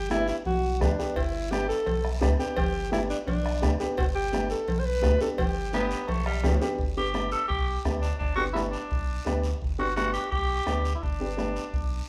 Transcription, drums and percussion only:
0.10 bombo rim medium
0.10 high conga medium
0.10 short guiro medium
0.28 short guiro medium
0.45 high conga soft
0.45 low conga medium
0.45 long guiro medium
0.81 bombo low medium
0.81 bombo rim medium
0.81 high conga medium
0.81 low conga medium
0.81 short guiro medium
1.00 short guiro medium
1.16 bombo low medium
1.16 cowbell loud
1.16 high conga soft
1.16 long guiro medium
1.52 bombo rim medium
1.52 high conga medium
1.52 short guiro medium
1.70 short guiro medium
1.86 cowbell medium
1.86 high conga soft
1.86 low conga medium
1.86 long guiro medium
2.05 bombo rim medium
2.22 bombo low medium
2.22 bombo rim medium
2.22 high conga medium
2.22 short guiro medium
2.40 short guiro medium
2.57 bombo low medium
2.57 cowbell loud
2.57 high conga soft
2.57 low conga medium
2.57 long guiro medium
2.92 bombo rim medium
2.92 high conga loud
2.92 short guiro medium
3.10 short guiro medium
3.28 cowbell medium
3.28 high conga soft
3.28 low conga medium
3.28 long guiro medium
3.46 bombo rim medium
3.62 bombo low medium
3.62 bombo rim medium
3.62 high conga medium
3.62 short guiro medium
3.80 short guiro medium
3.97 bombo low medium
3.97 cowbell loud
3.97 high conga soft
3.97 long guiro medium
4.33 bombo rim medium
4.33 high conga medium
4.33 short guiro medium
4.50 short guiro medium
4.68 cowbell medium
4.68 high conga soft
4.68 low conga medium
4.68 long guiro medium
5.03 bombo low medium
5.03 bombo rim medium
5.03 high conga medium
5.03 low timbale medium
5.03 short guiro medium
5.21 short guiro medium
5.38 bombo low medium
5.38 cowbell loud
5.38 high conga soft
5.38 low conga medium
5.38 long guiro medium
5.73 bombo rim medium
5.73 high conga medium
5.73 short guiro medium
5.91 short guiro medium
6.08 cowbell medium
6.08 high conga soft
6.08 low conga medium
6.08 long guiro medium
6.26 bombo rim medium
6.44 bombo low medium
6.44 bombo rim medium
6.44 high conga medium
6.44 low conga medium
6.44 low timbale medium
6.44 short guiro medium
6.62 short guiro medium
6.79 bombo low medium
6.79 high conga soft
6.79 long guiro medium
7.14 bombo rim medium
7.14 high conga medium
7.14 short guiro medium
7.31 short guiro medium
7.49 bombo low medium
7.49 high conga soft
7.49 long guiro medium
7.85 bombo low medium
7.85 bombo rim medium
7.85 high conga medium
7.85 short guiro medium
8.03 short guiro medium
8.21 bombo low medium
8.21 high conga soft
8.21 long guiro medium
8.56 bombo rim medium
8.56 high conga medium
8.56 short guiro medium
8.73 short guiro medium
8.91 bombo low medium
8.91 high conga soft
8.91 long guiro medium
9.26 bombo rim medium
9.26 high conga medium
9.26 short guiro medium
9.44 short guiro medium
9.62 bombo low medium
9.62 high conga soft
9.62 long guiro medium
9.97 bombo rim medium
9.97 high conga medium
9.97 short guiro medium
10.14 short guiro medium
10.32 bombo low medium
10.32 high conga soft
10.32 long guiro medium
10.67 bombo rim medium
10.67 high conga medium
10.67 short guiro medium
10.85 short guiro medium
11.03 bombo low medium
11.03 high conga soft
11.03 long guiro medium
11.38 bombo rim medium
11.38 high conga medium
11.38 short guiro medium
11.56 short guiro medium
11.74 bombo low medium
11.74 high conga soft
11.74 long guiro medium

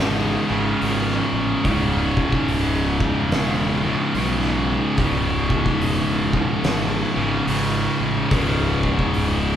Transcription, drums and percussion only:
0.82 open hi-hat medium
1.09 snare soft
1.65 kick loud
1.65 open hi-hat medium
2.17 kick medium
2.32 kick medium
2.48 open hi-hat medium
3.00 kick medium
3.32 snare loud
3.32 open hi-hat medium
4.15 open hi-hat medium
4.42 snare soft
4.97 kick loud
4.97 open hi-hat medium
5.50 kick medium
5.66 kick medium
5.81 open hi-hat medium
6.33 kick medium
6.64 snare loud
6.64 open hi-hat medium
7.48 open hi-hat medium
8.31 kick loud
8.31 open hi-hat medium
8.83 kick medium
8.99 kick medium
9.14 open hi-hat medium

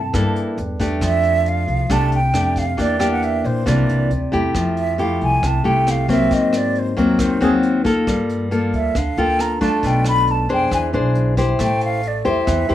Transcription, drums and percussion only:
0.14 kick medium
0.14 cross-stick medium
0.14 closed hi-hat medium
0.36 closed hi-hat soft
0.58 closed hi-hat soft
0.80 kick medium
0.80 closed hi-hat soft
1.01 kick medium
1.01 cross-stick medium
1.01 closed hi-hat medium
1.23 closed hi-hat soft
1.46 closed hi-hat soft
1.68 closed hi-hat soft
1.90 kick medium
1.90 cross-stick soft
1.90 closed hi-hat soft
2.12 closed hi-hat soft
2.34 cross-stick medium
2.34 closed hi-hat soft
2.56 kick soft
2.56 closed hi-hat soft
2.78 kick medium
2.78 closed hi-hat soft
3.00 cross-stick medium
3.00 closed hi-hat soft
3.22 closed hi-hat soft
3.45 closed hi-hat soft
3.67 kick medium
3.67 cross-stick medium
3.67 closed hi-hat medium
3.89 closed hi-hat soft
4.11 closed hi-hat soft
4.33 closed hi-hat soft
4.55 kick medium
4.55 cross-stick medium
4.55 closed hi-hat soft
4.77 closed hi-hat soft
4.99 closed hi-hat soft
5.21 closed hi-hat soft
5.43 kick medium
5.43 cross-stick medium
5.43 closed hi-hat soft
5.65 closed hi-hat soft
5.87 cross-stick medium
5.87 closed hi-hat soft
6.09 kick medium
6.09 closed hi-hat soft
6.31 kick medium
6.31 closed hi-hat soft
6.53 cross-stick medium
6.53 closed hi-hat soft
6.75 closed hi-hat soft
6.98 closed hi-hat soft
7.19 kick medium
7.19 cross-stick medium
7.19 closed hi-hat medium
7.41 closed hi-hat soft
7.63 closed hi-hat soft
7.85 kick medium
7.85 closed hi-hat soft
8.07 kick medium
8.07 cross-stick medium
8.07 closed hi-hat medium
8.29 closed hi-hat soft
8.52 closed hi-hat soft
8.74 closed hi-hat soft
8.95 kick soft
8.95 cross-stick medium
8.95 closed hi-hat medium
9.17 closed hi-hat soft
9.39 cross-stick medium
9.39 closed hi-hat soft
9.61 kick soft
9.61 closed hi-hat soft
9.83 kick soft
9.83 closed hi-hat soft
10.05 cross-stick medium
10.05 closed hi-hat soft
10.27 closed hi-hat soft
10.50 closed hi-hat soft
10.71 kick soft
10.71 cross-stick medium
10.71 closed hi-hat medium
10.93 closed hi-hat soft
11.15 closed hi-hat soft
11.37 kick soft
11.37 closed hi-hat soft
11.59 kick medium
11.59 cross-stick medium
11.59 closed hi-hat medium
11.81 closed hi-hat soft
12.03 closed hi-hat soft
12.25 closed hi-hat soft
12.47 kick medium
12.47 cross-stick medium
12.47 closed hi-hat soft
12.69 closed hi-hat soft

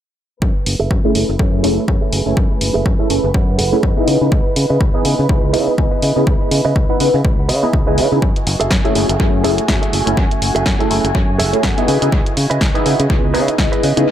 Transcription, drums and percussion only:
0.42 kick loud
0.66 open hi-hat loud
0.91 kick loud
1.15 open hi-hat medium
1.39 kick loud
1.64 open hi-hat loud
1.88 kick loud
2.13 open hi-hat medium
2.37 kick loud
2.61 open hi-hat loud
2.86 kick loud
3.10 open hi-hat medium
3.34 kick loud
3.59 open hi-hat loud
3.83 kick loud
4.08 open hi-hat medium
4.32 kick loud
4.56 open hi-hat loud
4.81 kick loud
5.05 open hi-hat medium
5.29 kick loud
5.54 open hi-hat loud
5.78 kick loud
6.02 open hi-hat loud
6.27 kick loud
6.51 open hi-hat loud
6.76 kick loud
7.00 open hi-hat medium
7.25 kick loud
7.49 open hi-hat loud
7.73 kick loud
7.98 open hi-hat medium
8.22 kick loud
8.36 closed hi-hat medium
8.47 open hi-hat loud
8.61 closed hi-hat medium
8.71 kick loud
8.71 snare loud
8.85 closed hi-hat soft
8.95 open hi-hat medium
9.09 closed hi-hat medium
9.20 kick loud
9.44 open hi-hat loud
9.58 closed hi-hat medium
9.68 kick loud
9.68 snare loud
9.83 closed hi-hat soft
9.93 open hi-hat medium
10.07 closed hi-hat medium
10.17 kick loud
10.31 closed hi-hat soft
10.42 open hi-hat loud
10.56 closed hi-hat medium
10.66 kick loud
10.66 snare loud
10.80 closed hi-hat soft
10.91 open hi-hat medium
11.05 closed hi-hat medium
11.15 kick loud
11.40 open hi-hat loud
11.53 closed hi-hat medium
11.63 kick loud
11.63 snare loud
11.78 closed hi-hat soft
11.88 open hi-hat medium
12.02 closed hi-hat medium
12.12 kick loud
12.26 closed hi-hat medium
12.37 open hi-hat loud
12.51 closed hi-hat medium
12.61 kick loud
12.61 snare loud
12.75 closed hi-hat soft
12.86 open hi-hat medium
13.00 closed hi-hat medium
13.10 kick loud
13.35 open hi-hat loud
13.48 closed hi-hat medium
13.58 kick loud
13.58 snare loud
13.73 closed hi-hat medium
13.83 open hi-hat medium
13.97 closed hi-hat medium

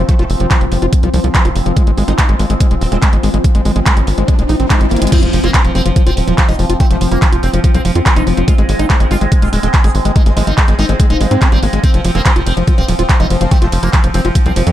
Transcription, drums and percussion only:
0.09 kick loud
0.09 closed hi-hat medium
0.19 closed hi-hat soft
0.30 open hi-hat loud
0.40 closed hi-hat soft
0.51 kick loud
0.51 clap loud
0.51 closed hi-hat medium
0.61 closed hi-hat soft
0.72 open hi-hat medium
0.82 closed hi-hat soft
0.93 kick loud
0.93 closed hi-hat loud
1.03 closed hi-hat soft
1.14 open hi-hat loud
1.24 closed hi-hat soft
1.35 kick loud
1.35 clap loud
1.35 closed hi-hat medium
1.45 closed hi-hat soft
1.56 open hi-hat medium
1.66 closed hi-hat soft
1.77 kick loud
1.77 closed hi-hat medium
1.87 closed hi-hat soft
1.98 open hi-hat loud
2.08 closed hi-hat soft
2.18 kick loud
2.18 clap loud
2.18 closed hi-hat medium
2.29 closed hi-hat soft
2.39 open hi-hat medium
2.50 closed hi-hat soft
2.60 kick loud
2.60 closed hi-hat loud
2.71 closed hi-hat soft
2.81 open hi-hat loud
2.92 closed hi-hat soft
3.02 kick loud
3.02 clap loud
3.02 closed hi-hat loud
3.13 closed hi-hat soft
3.23 open hi-hat medium
3.34 closed hi-hat soft
3.44 kick loud
3.44 closed hi-hat loud
3.55 closed hi-hat soft
3.65 open hi-hat loud
3.76 closed hi-hat soft
3.86 kick loud
3.86 clap loud
3.86 closed hi-hat loud
3.97 closed hi-hat soft
4.07 open hi-hat medium
4.18 closed hi-hat soft
4.28 kick loud
4.28 closed hi-hat loud
4.39 closed hi-hat soft
4.49 open hi-hat loud
4.60 closed hi-hat soft
4.70 kick loud
4.70 clap loud
4.70 closed hi-hat loud
4.81 closed hi-hat soft
4.91 closed hi-hat medium
4.96 closed hi-hat medium
5.02 closed hi-hat medium
5.07 closed hi-hat medium
5.12 kick loud
5.12 closed hi-hat loud
5.12 crash loud
5.23 closed hi-hat medium
5.33 open hi-hat loud
5.44 closed hi-hat medium
5.54 kick loud
5.54 clap loud
5.54 closed hi-hat loud
5.65 closed hi-hat medium
5.75 open hi-hat loud
5.86 closed hi-hat medium
5.96 kick loud
5.96 closed hi-hat loud
6.07 closed hi-hat medium
6.17 open hi-hat loud
6.28 closed hi-hat medium
6.38 kick loud
6.38 clap loud
6.38 closed hi-hat loud
6.49 closed hi-hat medium
6.59 open hi-hat medium
6.70 closed hi-hat medium
6.80 kick loud
6.80 closed hi-hat medium
6.91 closed hi-hat medium
7.01 open hi-hat loud
7.12 closed hi-hat medium
7.22 kick loud
7.22 clap loud
7.22 closed hi-hat medium
7.33 closed hi-hat medium
7.43 open hi-hat loud
7.54 closed hi-hat medium
7.64 kick loud
7.64 closed hi-hat loud
7.74 closed hi-hat medium
7.85 open hi-hat loud
7.95 closed hi-hat medium
8.06 kick loud
8.06 clap loud
8.06 closed hi-hat medium
8.16 closed hi-hat medium
8.27 open hi-hat loud
8.37 closed hi-hat medium
8.48 kick loud
8.48 closed hi-hat medium
8.58 closed hi-hat medium
8.69 open hi-hat loud
8.79 closed hi-hat medium
8.90 kick loud
8.90 clap loud
8.90 closed hi-hat medium
9.00 closed hi-hat medium
9.11 open hi-hat loud
9.21 closed hi-hat medium
9.32 kick loud
9.32 closed hi-hat medium
9.42 closed hi-hat medium
9.53 open hi-hat loud
9.63 closed hi-hat medium
9.74 kick loud
9.74 clap loud
9.74 closed hi-hat medium
9.84 closed hi-hat medium
9.95 open hi-hat loud
10.05 closed hi-hat medium
10.16 kick loud
10.16 closed hi-hat medium
10.26 closed hi-hat medium
10.37 open hi-hat loud
10.47 closed hi-hat medium
10.58 kick loud
10.58 clap loud
10.58 closed hi-hat medium
10.68 closed hi-hat soft
10.79 open hi-hat loud
10.89 closed hi-hat medium
11.00 kick loud
11.00 closed hi-hat medium
11.10 closed hi-hat medium
11.21 open hi-hat loud
11.31 closed hi-hat medium
11.42 kick loud
11.42 clap loud
11.42 closed hi-hat medium
11.52 closed hi-hat soft
11.63 open hi-hat loud
11.73 closed hi-hat medium
11.84 kick loud
11.84 closed hi-hat medium
11.84 ride medium
11.94 closed hi-hat soft
12.05 open hi-hat loud
12.05 ride medium
12.15 closed hi-hat soft
12.26 kick loud
12.26 clap loud
12.26 closed hi-hat medium
12.26 ride medium
12.36 closed hi-hat medium
12.47 open hi-hat medium
12.47 ride medium
12.57 closed hi-hat medium
12.67 kick loud
12.67 closed hi-hat medium
12.67 ride medium
12.78 closed hi-hat medium
12.88 open hi-hat loud
12.88 ride medium
12.99 closed hi-hat medium
13.09 kick loud
13.09 clap loud
13.09 closed hi-hat medium
13.09 ride medium
13.20 closed hi-hat medium
13.30 open hi-hat medium
13.30 ride medium
13.41 closed hi-hat medium
13.51 kick loud
13.51 closed hi-hat loud
13.51 ride medium
13.62 closed hi-hat medium
13.72 open hi-hat loud
13.72 ride medium
13.83 closed hi-hat medium
13.93 kick loud
13.93 clap loud
13.93 closed hi-hat medium
13.93 ride medium
14.04 closed hi-hat medium
14.14 open hi-hat medium
14.14 ride medium
14.25 closed hi-hat medium
14.35 kick loud
14.35 closed hi-hat loud
14.35 ride medium
14.46 closed hi-hat medium
14.56 open hi-hat loud
14.56 ride medium
14.67 closed hi-hat medium

